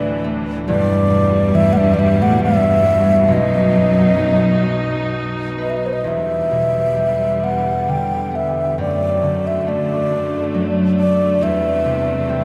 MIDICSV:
0, 0, Header, 1, 5, 480
1, 0, Start_track
1, 0, Key_signature, 1, "minor"
1, 0, Tempo, 873362
1, 369, Time_signature, 3, 2, 24, 8
1, 2294, Tempo, 938967
1, 3254, Tempo, 914634
1, 4214, Tempo, 882353
1, 6694, End_track
2, 0, Start_track
2, 0, Title_t, "Flute"
2, 0, Program_c, 0, 73
2, 0, Note_on_c, 0, 74, 82
2, 125, Note_off_c, 0, 74, 0
2, 375, Note_on_c, 0, 74, 91
2, 853, Note_on_c, 0, 76, 93
2, 861, Note_off_c, 0, 74, 0
2, 951, Note_on_c, 0, 78, 71
2, 959, Note_off_c, 0, 76, 0
2, 973, Note_on_c, 0, 76, 96
2, 982, Note_off_c, 0, 78, 0
2, 1066, Note_on_c, 0, 74, 60
2, 1075, Note_off_c, 0, 76, 0
2, 1097, Note_on_c, 0, 76, 86
2, 1105, Note_off_c, 0, 74, 0
2, 1221, Note_on_c, 0, 78, 95
2, 1230, Note_off_c, 0, 76, 0
2, 1334, Note_off_c, 0, 78, 0
2, 1339, Note_on_c, 0, 76, 101
2, 1828, Note_on_c, 0, 75, 80
2, 1836, Note_off_c, 0, 76, 0
2, 2780, Note_off_c, 0, 75, 0
2, 3028, Note_on_c, 0, 75, 66
2, 3073, Note_on_c, 0, 76, 47
2, 3081, Note_off_c, 0, 75, 0
2, 3107, Note_on_c, 0, 75, 67
2, 3115, Note_off_c, 0, 76, 0
2, 3157, Note_on_c, 0, 72, 47
2, 3165, Note_off_c, 0, 75, 0
2, 3193, Note_on_c, 0, 75, 69
2, 3200, Note_off_c, 0, 72, 0
2, 3266, Note_on_c, 0, 76, 73
2, 3274, Note_off_c, 0, 75, 0
2, 3982, Note_on_c, 0, 78, 67
2, 3990, Note_off_c, 0, 76, 0
2, 4223, Note_on_c, 0, 79, 80
2, 4232, Note_off_c, 0, 78, 0
2, 4471, Note_on_c, 0, 76, 69
2, 4479, Note_off_c, 0, 79, 0
2, 4708, Note_off_c, 0, 76, 0
2, 4715, Note_on_c, 0, 74, 76
2, 5079, Note_on_c, 0, 76, 70
2, 5087, Note_off_c, 0, 74, 0
2, 5155, Note_off_c, 0, 76, 0
2, 5155, Note_on_c, 0, 76, 53
2, 5196, Note_on_c, 0, 74, 77
2, 5204, Note_off_c, 0, 76, 0
2, 5767, Note_off_c, 0, 74, 0
2, 5909, Note_on_c, 0, 74, 87
2, 6145, Note_on_c, 0, 76, 88
2, 6153, Note_off_c, 0, 74, 0
2, 6694, Note_off_c, 0, 76, 0
2, 6694, End_track
3, 0, Start_track
3, 0, Title_t, "Harp"
3, 0, Program_c, 1, 46
3, 0, Note_on_c, 1, 26, 67
3, 0, Note_on_c, 1, 38, 63
3, 0, Note_on_c, 1, 50, 54
3, 0, Note_on_c, 1, 52, 55
3, 0, Note_on_c, 1, 59, 58
3, 133, Note_on_c, 1, 57, 61
3, 372, Note_on_c, 1, 28, 63
3, 377, Note_on_c, 1, 40, 66
3, 397, Note_off_c, 1, 26, 0
3, 397, Note_off_c, 1, 38, 0
3, 397, Note_off_c, 1, 50, 0
3, 397, Note_off_c, 1, 52, 0
3, 415, Note_off_c, 1, 59, 0
3, 607, Note_on_c, 1, 47, 54
3, 847, Note_on_c, 1, 52, 62
3, 1085, Note_on_c, 1, 55, 60
3, 1571, Note_on_c, 1, 59, 56
3, 1799, Note_off_c, 1, 47, 0
3, 1802, Note_on_c, 1, 35, 60
3, 1805, Note_on_c, 1, 47, 60
3, 1834, Note_off_c, 1, 28, 0
3, 1834, Note_off_c, 1, 40, 0
3, 1834, Note_off_c, 1, 52, 0
3, 1834, Note_off_c, 1, 55, 0
3, 1963, Note_off_c, 1, 57, 0
3, 2048, Note_on_c, 1, 54, 54
3, 2295, Note_on_c, 1, 63, 53
3, 2528, Note_on_c, 1, 66, 50
3, 3013, Note_on_c, 1, 71, 50
3, 3209, Note_off_c, 1, 59, 0
3, 3249, Note_on_c, 1, 40, 50
3, 3280, Note_off_c, 1, 35, 0
3, 3280, Note_off_c, 1, 47, 0
3, 3280, Note_off_c, 1, 54, 0
3, 3280, Note_off_c, 1, 63, 0
3, 3495, Note_on_c, 1, 47, 42
3, 3735, Note_on_c, 1, 55, 42
3, 3766, Note_off_c, 1, 66, 0
3, 3978, Note_on_c, 1, 59, 47
3, 4082, Note_off_c, 1, 71, 0
3, 4212, Note_on_c, 1, 50, 48
3, 4240, Note_off_c, 1, 47, 0
3, 4240, Note_off_c, 1, 55, 0
3, 4448, Note_off_c, 1, 59, 0
3, 4450, Note_on_c, 1, 59, 50
3, 4703, Note_on_c, 1, 42, 58
3, 4730, Note_off_c, 1, 40, 0
3, 4730, Note_off_c, 1, 50, 0
3, 4942, Note_on_c, 1, 50, 46
3, 5185, Note_on_c, 1, 57, 53
3, 5424, Note_on_c, 1, 62, 47
3, 5663, Note_on_c, 1, 54, 58
3, 5900, Note_off_c, 1, 62, 0
3, 5902, Note_on_c, 1, 62, 57
3, 6135, Note_on_c, 1, 40, 61
3, 6140, Note_off_c, 1, 59, 0
3, 6166, Note_off_c, 1, 42, 0
3, 6166, Note_off_c, 1, 50, 0
3, 6166, Note_off_c, 1, 54, 0
3, 6373, Note_on_c, 1, 48, 48
3, 6613, Note_on_c, 1, 60, 57
3, 6694, Note_off_c, 1, 40, 0
3, 6694, Note_off_c, 1, 48, 0
3, 6694, Note_off_c, 1, 57, 0
3, 6694, Note_off_c, 1, 60, 0
3, 6694, Note_off_c, 1, 62, 0
3, 6694, End_track
4, 0, Start_track
4, 0, Title_t, "String section"
4, 0, Program_c, 2, 48
4, 0, Note_on_c, 2, 38, 63
4, 0, Note_on_c, 2, 45, 59
4, 0, Note_on_c, 2, 52, 73
4, 353, Note_off_c, 2, 45, 0
4, 353, Note_off_c, 2, 52, 0
4, 355, Note_off_c, 2, 38, 0
4, 374, Note_on_c, 2, 40, 65
4, 375, Note_on_c, 2, 47, 69
4, 375, Note_on_c, 2, 55, 76
4, 1794, Note_off_c, 2, 40, 0
4, 1795, Note_off_c, 2, 55, 0
4, 1803, Note_on_c, 2, 54, 60
4, 1805, Note_on_c, 2, 63, 68
4, 3236, Note_off_c, 2, 47, 0
4, 3238, Note_off_c, 2, 54, 0
4, 3239, Note_off_c, 2, 63, 0
4, 3257, Note_on_c, 2, 50, 44
4, 3259, Note_on_c, 2, 40, 51
4, 3263, Note_on_c, 2, 55, 56
4, 4690, Note_off_c, 2, 50, 0
4, 4691, Note_off_c, 2, 40, 0
4, 4693, Note_off_c, 2, 55, 0
4, 4705, Note_on_c, 2, 50, 56
4, 4707, Note_on_c, 2, 42, 66
4, 4709, Note_on_c, 2, 57, 64
4, 6126, Note_off_c, 2, 50, 0
4, 6127, Note_off_c, 2, 42, 0
4, 6141, Note_on_c, 2, 48, 59
4, 6147, Note_on_c, 2, 55, 58
4, 6148, Note_on_c, 2, 40, 65
4, 6694, Note_off_c, 2, 40, 0
4, 6694, Note_off_c, 2, 48, 0
4, 6694, Note_off_c, 2, 55, 0
4, 6694, Note_off_c, 2, 57, 0
4, 6694, End_track
5, 0, Start_track
5, 0, Title_t, "Cello"
5, 0, Program_c, 3, 42
5, 0, Note_on_c, 3, 45, 75
5, 127, Note_off_c, 3, 45, 0
5, 373, Note_on_c, 3, 43, 79
5, 848, Note_off_c, 3, 43, 0
5, 848, Note_on_c, 3, 43, 82
5, 947, Note_on_c, 3, 45, 54
5, 955, Note_off_c, 3, 43, 0
5, 972, Note_on_c, 3, 43, 92
5, 980, Note_off_c, 3, 45, 0
5, 1054, Note_on_c, 3, 42, 63
5, 1063, Note_off_c, 3, 43, 0
5, 1082, Note_on_c, 3, 43, 80
5, 1091, Note_off_c, 3, 42, 0
5, 1216, Note_on_c, 3, 45, 88
5, 1224, Note_off_c, 3, 43, 0
5, 1331, Note_off_c, 3, 45, 0
5, 1336, Note_on_c, 3, 43, 72
5, 1817, Note_on_c, 3, 42, 71
5, 1825, Note_off_c, 3, 43, 0
5, 2775, Note_off_c, 3, 42, 0
5, 6694, End_track
0, 0, End_of_file